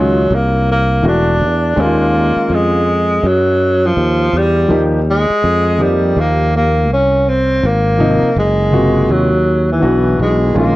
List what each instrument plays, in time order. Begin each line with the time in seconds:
Already playing: fretless electric bass C#2, grand piano D#3 G#3 C#4 F4
0.00 tenor saxophone F#3
0.31 fretless electric bass C2
0.35 tenor saxophone A#3
0.72 tenor saxophone A#3
1.03 fretless electric bass E1, grand piano E3 A3 D4 F#4
1.08 tenor saxophone D4
1.40 fretless electric bass E2
1.76 fretless electric bass D#2, grand piano D#3 G#3 C#4 D#4
1.81 tenor saxophone A#3, grand piano F4
2.36 muted fretless electric bass stroke
2.50 fretless electric bass F2
2.54 tenor saxophone G#3
3.24 fretless electric bass F#2, tenor saxophone F#3
3.86 tenor saxophone F3
3.97 fretless electric bass D#2
4.33 fretless electric bass E2
4.37 tenor saxophone G3
4.68 fretless electric bass D#2, grand piano F3 A#3 D#4 G4
5.10 tenor saxophone G#3
5.30 muted fretless electric bass stroke
5.44 fretless electric bass F2
5.78 grand piano F3 A#3 D#4 G4
5.83 tenor saxophone G3
6.16 fretless electric bass D#2, tenor saxophone A#3
6.56 tenor saxophone A#3
6.90 fretless electric bass C2, tenor saxophone C#4
7.28 tenor saxophone C4
7.63 fretless electric bass G#1, tenor saxophone A#3
7.98 grand piano C3 F3 A#3 D#4
8.23 muted fretless electric bass stroke
8.36 fretless electric bass F#1, tenor saxophone G#3
8.71 grand piano C3 A#3 F4 F#4
9.09 fretless electric bass D#2, tenor saxophone F#3
9.72 tenor saxophone E3
9.80 fretless electric bass B1, grand piano E3 B3 D4 F#4
10.19 fretless electric bass B1, tenor saxophone G#3
10.54 fretless electric bass A#1, grand piano D#3 G#3 C#4 F4
10.58 tenor saxophone A#3